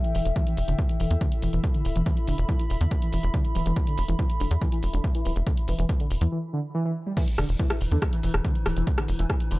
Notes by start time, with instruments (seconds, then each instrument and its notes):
Already playing: ambient pad E4 A4 E5 G5
0.04 analog synth lead E3, closed hi-hat
0.15 analog synth bass E1, analog synth lead E3, open hi-hat
0.25 analog synth bass E1, closed hi-hat
0.36 analog synth lead E3, kick, closed hi-hat
0.47 analog synth lead E3, closed hi-hat
0.57 analog synth bass E1, open hi-hat
0.68 analog synth bass E1, analog synth lead D3, closed hi-hat
0.79 kick, closed hi-hat
0.89 analog synth lead E3, closed hi-hat
1.00 analog synth bass E1, analog synth lead E3, open hi-hat
1.11 analog synth bass E2, ambient pad B5, closed hi-hat
1.21 analog synth lead D3, kick, closed hi-hat
1.32 closed hi-hat
1.42 analog synth bass E1, analog synth lead E3, open hi-hat
1.53 analog synth bass E1, analog synth lead E3, closed hi-hat
1.64 kick, closed hi-hat
1.74 analog synth lead D3, closed hi-hat
1.85 analog synth bass D1, open hi-hat
1.96 analog synth bass E1, analog synth lead E3, closed hi-hat
2.06 analog synth lead E3, kick, closed hi-hat
2.17 closed hi-hat
2.27 analog synth bass E1, analog synth lead D3, open hi-hat
2.38 analog synth bass E1, closed hi-hat
2.49 analog synth lead E3, kick, closed hi-hat
2.59 analog synth lead E3, closed hi-hat
2.70 analog synth bass E1, open hi-hat
2.81 analog synth bass E2, analog synth lead D3, closed hi-hat
2.91 kick, closed hi-hat
3.02 analog synth lead E3, closed hi-hat
3.13 analog synth bass E1, analog synth lead E3, open hi-hat
3.23 analog synth bass E1, closed hi-hat
3.34 analog synth lead D3, kick, closed hi-hat
3.45 closed hi-hat
3.55 analog synth bass D1, analog synth lead E3, open hi-hat
3.66 analog synth bass E1, analog synth lead E3, closed hi-hat
3.76 kick, closed hi-hat
3.87 analog synth lead D3, closed hi-hat
3.98 analog synth bass E1, open hi-hat
4.08 analog synth bass E1, analog synth lead E3, closed hi-hat
4.19 analog synth lead E3, kick, closed hi-hat
4.30 closed hi-hat
4.40 analog synth bass E1, analog synth lead D3, open hi-hat
4.51 analog synth bass E2, closed hi-hat
4.61 analog synth lead E3, kick, closed hi-hat
4.72 analog synth lead E3, closed hi-hat
4.83 analog synth bass E1, open hi-hat
4.93 analog synth bass E1, analog synth lead D3, closed hi-hat
5.04 kick, closed hi-hat
5.15 analog synth lead E3, closed hi-hat
5.25 analog synth bass D1, analog synth lead E3, open hi-hat
5.36 analog synth bass E1, closed hi-hat
5.47 analog synth lead D3, kick, closed hi-hat
5.57 closed hi-hat
5.68 analog synth bass E1, analog synth lead E3, open hi-hat
5.79 analog synth bass E1, analog synth lead E3, closed hi-hat
5.89 kick, closed hi-hat
6.00 analog synth lead D3, closed hi-hat
6.11 analog synth bass E1, open hi-hat
6.21 analog synth bass E2, analog synth lead E3, closed hi-hat
6.32 analog synth lead E3
6.53 analog synth lead D3
6.74 analog synth lead E3
6.85 analog synth lead E3
7.06 analog synth lead G3
7.17 analog synth lead E3, synth drone E3, kick, closed hi-hat, crash
7.28 closed hi-hat
7.38 analog synth bass E1, analog synth lead D3, cross-stick, open hi-hat
7.49 analog synth bass E1, closed hi-hat
7.59 analog synth lead E3, kick, closed hi-hat
7.70 analog synth lead E3, cross-stick, closed hi-hat
7.81 analog synth bass E1, open hi-hat
7.91 analog synth bass E2, analog synth lead D3, closed hi-hat
8.02 kick, cross-stick, closed hi-hat
8.13 analog synth lead E3, closed hi-hat
8.23 analog synth bass E1, analog synth lead E3, open hi-hat
8.34 analog synth bass E1, cross-stick, closed hi-hat
8.45 analog synth lead D3, kick, closed hi-hat
8.55 closed hi-hat
8.66 analog synth bass D1, analog synth lead E3, cross-stick, open hi-hat
8.77 analog synth bass E1, analog synth lead E3, closed hi-hat
8.87 kick, closed hi-hat
8.98 analog synth lead D3, cross-stick, closed hi-hat
9.08 analog synth bass E1, open hi-hat
9.19 analog synth bass E1, analog synth lead E3, closed hi-hat
9.30 analog synth lead E3, kick, cross-stick, closed hi-hat
9.40 closed hi-hat
9.51 analog synth bass E1, analog synth lead D3, open hi-hat